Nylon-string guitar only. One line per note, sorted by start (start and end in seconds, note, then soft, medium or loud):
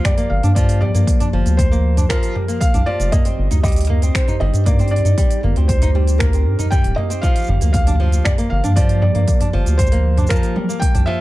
0.05 0.16 G3 medium
0.17 0.42 A#3 medium
0.43 0.51 D4 medium
0.56 0.81 F3 loud
0.82 0.93 G3 medium
0.94 1.19 A#3 medium
1.20 1.28 D4 medium
1.33 1.58 F3 loud
1.59 1.70 G3 medium
1.71 1.96 A#3 medium
1.97 2.04 D4 medium
2.10 2.34 F3 loud
2.35 2.47 G3 medium
2.48 2.73 A#3 medium
2.74 2.81 D4 medium
2.87 3.11 F3 medium
3.12 3.24 A#3 medium
3.25 3.50 C4 medium
3.51 3.58 D#4 medium
3.64 3.88 G3 loud
3.90 4.01 A#3 medium
4.02 4.27 C4 medium
4.28 4.35 D#4 medium
4.41 4.65 G3 loud
4.67 4.78 A#3 medium
4.80 5.04 C4 medium
5.05 5.12 D#4 medium
5.18 5.42 G3 loud
5.44 5.55 A#3 medium
5.57 5.81 C4 medium
5.82 5.89 D#4 medium
5.95 6.19 G3 medium
6.21 6.32 A#3 medium
6.34 6.58 C4 medium
6.59 6.66 D#4 medium
6.72 6.96 G3 loud
6.98 7.09 A#3 medium
7.10 7.23 C4 medium
7.23 7.47 F3 medium
7.49 7.60 G3 medium
7.62 7.86 A#3 medium
7.87 7.94 D4 medium
8.00 8.24 F3 medium
8.25 8.37 G3 medium
8.38 8.63 A#3 medium
8.64 8.71 D4 medium
8.77 9.01 F3 loud
9.02 9.14 G3 medium
9.15 9.39 A#3 medium
9.41 9.48 D4 medium
9.53 9.78 F3 loud
9.79 9.91 G3 medium
9.92 10.16 A#3 medium
10.18 10.25 D4 medium
10.30 10.55 F3 loud
10.56 10.68 G3 medium
10.69 10.93 A#3 medium
10.95 11.02 D4 medium
11.07 11.21 F3 loud